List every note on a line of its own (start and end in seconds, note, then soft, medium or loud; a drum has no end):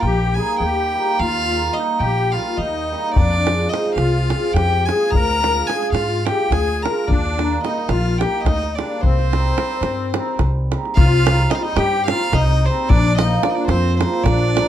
0.00 0.38 A#1 loud
0.00 0.34 G3 medium
0.00 0.36 G5 medium
0.05 0.36 G4 loud
0.34 0.92 G3 medium
0.34 0.55 A#3 medium
0.34 0.55 D#4 medium
0.34 0.55 G4 medium
0.34 0.59 G#5 loud
0.38 0.63 G#4 medium
0.59 0.96 D#2 medium
0.59 1.21 G5 loud
0.65 1.18 G4 medium
0.93 1.49 G3 medium
0.93 1.13 A#3 medium
0.93 1.13 D#4 medium
0.93 1.14 G4 medium
1.19 1.68 D#2 loud
1.19 1.76 F4 medium
1.19 1.74 F5 loud
1.50 1.74 G3 medium
1.50 1.69 A#3 medium
1.50 1.69 D#4 medium
1.50 1.69 G4 medium
1.73 2.32 G3 medium
1.73 1.94 A#3 medium
1.73 2.01 D#5 medium
1.77 1.94 D#4 medium
1.77 2.02 D#4 medium
1.77 1.95 G4 medium
2.00 2.35 A#1 loud
2.00 2.33 G4 medium
2.00 2.33 G5 loud
2.32 2.90 G3 medium
2.32 2.52 A#3 medium
2.32 2.52 D#4 medium
2.32 2.58 F4 medium
2.32 2.52 G4 medium
2.32 2.58 F5 medium
2.57 2.93 D#2 medium
2.57 3.17 D#4 medium
2.57 3.14 D#5 medium
2.91 3.22 G3 medium
2.91 3.10 A#3 medium
2.91 3.11 D#4 medium
2.91 3.11 G4 medium
3.14 3.65 F2 loud
3.14 3.68 D4 medium
3.14 3.70 D5 loud
3.14 davul low medium
3.33 davul high soft
3.47 3.70 G#3 medium
3.47 3.65 C4 medium
3.47 3.66 F4 medium
3.47 3.66 G#4 medium
3.47 davul high medium
3.69 4.27 G#3 medium
3.69 3.90 C4 medium
3.69 3.97 D#4 medium
3.69 3.90 F4 medium
3.69 3.90 G#4 medium
3.69 3.94 D#5 loud
3.74 davul high medium
3.86 davul high soft
3.95 4.31 C2 medium
3.95 4.52 F4 loud
3.95 4.55 F5 loud
3.95 davul high medium
4.28 4.84 G#3 medium
4.28 4.48 C4 medium
4.28 4.48 F4 medium
4.28 4.48 G#4 medium
4.28 davul high medium
4.43 davul high soft
4.53 4.89 F2 medium
4.53 4.87 G4 medium
4.53 4.87 G5 loud
4.53 davul high medium
4.53 davul low medium
4.73 davul high soft
4.85 5.18 G#3 medium
4.85 5.05 C4 medium
4.85 5.06 F4 medium
4.85 5.06 G#4 medium
4.85 5.12 G#5 loud
4.85 davul high medium
4.91 5.15 G#4 medium
5.11 5.60 D2 loud
5.11 5.68 A#5 loud
5.15 5.69 A#4 loud
5.15 davul low medium
5.29 davul high soft
5.42 5.66 G#3 medium
5.42 5.61 D4 medium
5.42 5.61 F4 medium
5.42 5.61 G#4 medium
5.42 davul high medium
5.67 6.23 G#3 medium
5.67 5.86 D4 medium
5.67 5.87 F4 medium
5.67 5.87 G#4 medium
5.67 5.94 G#4 medium
5.67 5.92 G#5 loud
5.67 davul high medium
5.83 davul high soft
5.92 6.27 G#2 loud
5.92 6.24 F4 medium
5.92 6.27 F5 medium
5.92 davul high medium
6.25 6.81 G#3 medium
6.25 6.44 D4 medium
6.25 6.44 F4 medium
6.25 6.52 G4 medium
6.25 6.44 G#4 medium
6.25 6.54 G5 loud
6.25 davul high medium
6.41 davul high soft
6.50 6.85 D2 medium
6.50 6.83 G#4 medium
6.50 6.84 G#5 loud
6.50 davul high medium
6.50 davul low medium
6.68 davul high soft
6.82 7.13 G#3 medium
6.82 7.01 D4 medium
6.82 7.01 F4 medium
6.82 7.02 G#4 medium
6.82 7.08 A#4 medium
6.82 7.09 A#5 medium
6.82 davul high medium
7.08 7.56 D#2 loud
7.08 7.63 D4 loud
7.08 7.62 D5 loud
7.08 davul low medium
7.25 davul high soft
7.38 7.62 G3 medium
7.38 7.56 A#3 medium
7.38 7.56 D#4 medium
7.38 7.57 G4 medium
7.38 davul high medium
7.63 8.19 G3 medium
7.63 7.82 A#3 medium
7.63 7.82 D#4 medium
7.63 7.88 D#4 medium
7.63 7.82 G4 medium
7.63 7.90 D#5 medium
7.63 davul high medium
7.78 davul high soft
7.89 8.23 A#1 medium
7.89 8.21 F4 loud
7.89 8.20 F5 medium
7.89 davul high medium
8.18 8.77 G3 medium
8.18 8.39 A#3 medium
8.18 8.39 D#4 medium
8.18 8.46 G4 medium
8.18 8.40 G4 medium
8.18 8.43 G5 medium
8.18 davul high medium
8.35 davul high soft
8.43 8.79 D2 medium
8.43 8.76 D#4 medium
8.43 8.77 D#5 loud
8.43 davul high medium
8.43 davul low medium
8.62 davul high soft
8.75 9.08 G3 medium
8.75 8.96 A#3 medium
8.75 9.04 D4 medium
8.75 8.97 D#4 medium
8.75 9.03 D5 medium
8.75 davul high medium
8.79 8.97 G4 medium
9.01 9.50 C2 medium
9.01 10.40 C4 loud
9.01 10.38 C5 loud
9.01 davul low medium
9.19 davul high soft
9.32 9.56 G3 medium
9.32 9.50 C4 medium
9.32 9.51 D#4 medium
9.32 9.51 G4 medium
9.32 davul high medium
9.57 10.13 G3 medium
9.57 9.75 C4 medium
9.57 9.76 D#4 medium
9.57 9.76 G4 medium
9.57 davul high medium
9.81 10.16 G2 medium
9.81 davul high medium
10.14 10.70 G3 medium
10.14 10.33 C4 medium
10.14 10.33 D#4 medium
10.14 10.33 G4 medium
10.14 davul high medium
10.39 10.73 C2 medium
10.39 davul high medium
10.39 davul low medium
10.71 11.02 G3 medium
10.71 10.90 C4 medium
10.71 10.91 D#4 medium
10.71 10.91 G4 medium
10.71 davul high medium
10.85 davul high soft
10.95 11.44 C2 loud
10.95 11.47 F4 loud
10.95 11.51 F5 loud
10.95 davul low loud
11.26 11.50 G3 medium
11.26 11.44 C4 medium
11.26 11.44 D#4 medium
11.26 11.45 G4 medium
11.26 davul high medium
11.38 davul high soft
11.50 12.06 G3 medium
11.50 11.69 C4 medium
11.50 11.57 D#4 medium
11.50 11.69 D#4 medium
11.50 11.70 G4 medium
11.50 11.56 D#5 medium
11.50 davul high medium
11.55 11.63 F4 medium
11.55 11.64 F5 medium
11.62 11.76 D#4 medium
11.62 11.78 D#5 loud
11.62 davul high soft
11.76 12.10 G2 loud
11.76 12.07 G4 loud
11.76 12.06 G5 loud
11.76 davul high medium
12.07 12.63 G3 medium
12.07 12.25 C4 medium
12.07 12.26 D#4 medium
12.07 12.32 F4 medium
12.07 12.26 G4 medium
12.07 12.36 F5 loud
12.07 davul high medium
12.20 davul high soft
12.32 12.67 C2 loud
12.32 12.65 D#4 medium
12.32 12.67 D#5 loud
12.32 davul high medium
12.32 davul low medium
12.64 12.94 G3 medium
12.64 12.83 C4 medium
12.64 12.91 C4 medium
12.64 12.83 D#4 medium
12.64 12.83 G4 medium
12.64 12.90 C5 medium
12.89 13.36 A#1 loud
12.89 13.18 D4 loud
12.89 13.17 D5 loud
12.89 davul low loud
13.18 13.41 F3 medium
13.18 13.37 A#3 medium
13.18 13.37 D4 medium
13.18 13.42 D#4 medium
13.18 13.37 F4 medium
13.18 13.45 D#5 medium
13.18 davul high medium
13.31 davul high soft
13.43 13.96 F3 medium
13.43 13.61 A#3 medium
13.43 13.49 D4 medium
13.43 13.61 D4 medium
13.43 13.62 F4 medium
13.43 13.51 D5 medium
13.43 davul high medium
13.50 13.56 D#4 medium
13.50 13.56 D#5 medium
13.55 13.69 D4 medium
13.55 13.67 D5 medium
13.55 davul high soft
13.68 14.02 F2 loud
13.68 13.98 C4 loud
13.68 13.97 C5 medium
13.68 davul high medium
13.98 14.53 F3 medium
13.98 14.17 A#3 medium
13.98 14.24 C4 medium
13.98 14.18 D4 medium
13.98 14.18 F4 medium
13.98 14.25 C5 medium
13.98 davul high medium
14.14 davul high soft
14.23 14.58 A#1 loud
14.23 14.68 D4 medium
14.23 14.68 D5 loud
14.23 davul high medium
14.23 davul low medium
14.55 14.68 F3 medium
14.55 14.68 A#3 medium
14.55 14.68 D4 medium
14.55 14.68 F4 medium
14.55 davul high medium